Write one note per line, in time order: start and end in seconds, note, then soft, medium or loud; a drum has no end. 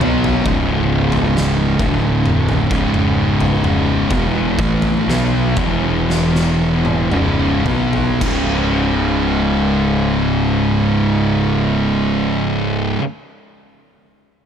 0.01 0.43 B1 loud
0.01 0.44 B2 medium
0.01 0.45 F#3 loud
0.01 0.45 B3 loud
0.01 mid tom loud
0.24 floor tom loud
0.45 1.76 C#1 medium
0.45 1.78 C#2 loud
0.45 1.78 G#2 loud
0.45 1.78 C#3 loud
0.45 kick loud
0.45 floor tom medium
1.12 floor tom medium
1.37 snare medium
1.79 2.66 D1 medium
1.79 2.69 D2 loud
1.79 2.69 A2 medium
1.79 2.70 D3 loud
1.79 kick loud
1.79 floor tom medium
2.26 mid tom medium
2.49 floor tom medium
2.70 4.07 C#1 medium
2.70 4.09 C#2 medium
2.70 4.10 G#2 medium
2.70 4.10 C#3 loud
2.70 kick loud
2.94 mid tom medium
3.41 floor tom medium
3.64 mid tom medium
4.10 4.55 E1 medium
4.10 4.57 E2 medium
4.10 4.57 B2 loud
4.10 4.58 E3 loud
4.10 kick loud
4.10 floor tom medium
4.59 5.04 A1 medium
4.59 5.06 A2 medium
4.59 5.07 E3 medium
4.59 5.07 A3 medium
4.59 kick loud
4.82 floor tom medium
5.07 5.54 B1 medium
5.07 5.56 B2 medium
5.07 5.56 F#3 medium
5.07 5.56 B3 loud
5.07 snare medium
5.57 7.08 E1 medium
5.57 7.11 E2 medium
5.57 7.11 B2 loud
5.57 7.11 E3 loud
5.57 kick loud
5.57 floor tom medium
6.10 snare medium
6.35 snare medium
6.85 high tom medium
7.12 7.63 C#1 loud
7.12 7.65 C#2 medium
7.12 7.65 G#2 medium
7.12 7.65 C#3 loud
7.12 mid tom medium
7.65 8.17 B1 medium
7.65 8.20 B2 medium
7.65 8.21 F#3 medium
7.65 8.21 B3 medium
7.65 floor tom medium
7.93 floor tom medium
8.21 12.94 C#1 medium
8.21 12.98 C#2 medium
8.21 13.00 G#2 medium
8.21 kick loud
8.21 crash medium
8.25 13.02 C#3 loud